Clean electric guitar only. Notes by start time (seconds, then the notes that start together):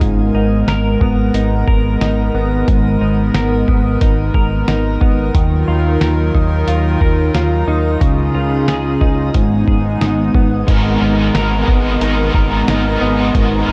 Already playing: D#4 G#4
0.01 G#2
0.35 D#4
0.68 A#4
1.01 B3
1.34 D#4
1.68 A#4
2.01 D#4
2.35 B3
2.68 G#2
3.01 D#4
3.35 A#4
3.68 B3
4.02 D#4
4.35 A#4
4.68 D#4
5.01 B3
5.35 D#3
5.68 F4
6.01 A#4
6.34 D#4
6.68 F4
7.02 A#4
7.34 F4
7.68 D#4
8.01 C#3
8.35 F4
8.68 G#4
9.01 D#4
9.35 G#2
9.68 G#4
10.01 D#4
10.35 B3
10.68 G#2
11.01 D#4
11.35 A#4
11.68 B3
12.01 D#4
12.35 A#4
12.68 D#4
13.01 B3
13.35 G#2
13.68 D#4